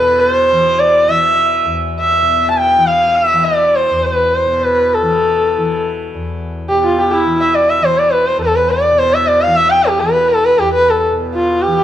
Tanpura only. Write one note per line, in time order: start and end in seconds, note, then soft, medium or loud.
0.00 1.65 E2 medium
0.00 2.22 B2 medium
0.00 0.52 E3 medium
0.52 1.08 E3 medium
1.08 2.78 E3 soft
1.65 3.90 E2 medium
2.22 4.45 B2 medium
2.78 3.33 E3 medium
3.33 5.02 E3 medium
3.90 6.14 E2 medium
4.46 6.69 B2 medium
5.02 5.58 E3 medium
5.58 7.25 E3 medium
6.14 8.37 E2 medium
6.70 8.91 B2 medium
7.25 7.81 E3 medium
7.81 9.47 E3 medium
8.38 10.57 E2 medium
8.91 11.11 B2 medium
9.47 10.02 E3 medium
10.02 11.67 E3 medium
10.58 11.84 E2 medium
11.12 11.84 B2 medium
11.67 11.84 E3 medium